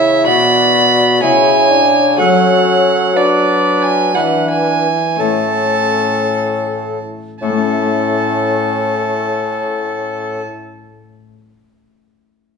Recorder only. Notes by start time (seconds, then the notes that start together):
Already playing: C#5
0.26 D5
1.22 C#5
2.19 A4
3.15 B4
4.14 B4
5.18 A4
7.42 A4